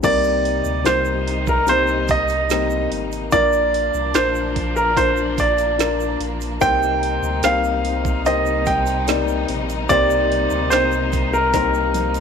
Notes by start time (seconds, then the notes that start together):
0.03 C2 C3 G3 A#3 C4 D#4 A#4 D5, kick, open hi-hat, crash, shaker
0.24 shaker
0.45 open hi-hat
0.65 D2, shaker
0.84 C2 G3 A#3 C4 D#4 F4 C5, snare, open hi-hat, shaker
1.05 shaker
1.28 open hi-hat
1.47 A#4, kick, shaker
1.67 G3 A#3 C4 D#4 A#4 C5, open hi-hat, shaker
1.87 shaker
2.08 D#5, kick, open hi-hat, shaker
2.28 open hi-hat, shaker
2.50 G3 A#3 C4 D#4 A#4, snare, open hi-hat, shaker
2.70 shaker
2.91 G#1, open hi-hat
3.12 open hi-hat, shaker
3.32 A#1 A#2 F3 D4 F4 A#4 D5, kick, open hi-hat, shaker
3.53 shaker
3.74 open hi-hat
3.94 C2, shaker
4.14 A#1 D4 F4 A#4 C5, snare, open hi-hat, shaker
4.35 shaker
4.56 kick, open hi-hat
4.76 A#4, shaker
4.96 D4 F4 A#4 C5, kick, open hi-hat, shaker
5.17 shaker
5.38 D5, kick, open hi-hat, shaker
5.58 open hi-hat, shaker
5.78 D4 F4 A#4, snare, open hi-hat, shaker
6.00 shaker
6.20 A#1, open hi-hat
6.41 open hi-hat, shaker
6.60 C2 C3 G3 A#3 C4 D#4 G4 C5 G5, kick, open hi-hat, shaker
6.83 shaker
7.03 open hi-hat
7.22 D2, shaker
7.43 C2 A#3 C4 D#4 G4 C5 F5, snare, open hi-hat, shaker
7.64 shaker
7.85 open hi-hat
8.05 kick, shaker
8.26 A#3 C4 D#4 G4 C5 D#5, open hi-hat, shaker
8.46 shaker
8.66 G5, kick, open hi-hat, shaker
8.86 open hi-hat, shaker
9.08 A#3 C4 D#4 G4 D5, snare, open hi-hat, shaker
9.28 shaker
9.48 A#1, open hi-hat
9.70 open hi-hat, shaker
9.89 C2 C3 A#3 C4 D#4 G4 C5 D5, kick, open hi-hat, shaker
10.10 shaker
10.32 open hi-hat
10.50 D2, shaker
10.70 C2 A#3 C4 D#4 G4 C5, snare, open hi-hat, shaker
10.92 shaker
11.12 kick, open hi-hat, shaker
11.33 A#4, shaker
11.54 A#3 C4 D#4 G4 A#4 C5, kick, snare, open hi-hat, shaker
11.74 shaker
11.94 open hi-hat, high tom, shaker
12.14 open hi-hat, shaker